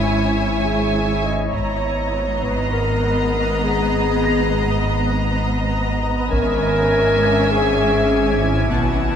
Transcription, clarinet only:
Already playing: E4
0.65 G#4
1.24 D#5
1.54 C#5
2.42 B4
2.73 A#4
3.64 G#4
6.31 A#4
7.51 G#4
8.43 E4
8.71 E4

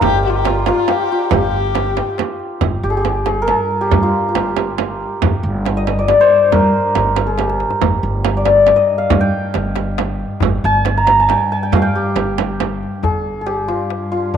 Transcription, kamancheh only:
0.03 G4
0.25 G4
0.30 F4
0.36 G4
0.47 F4
0.69 F4
0.91 G4
1.33 G4

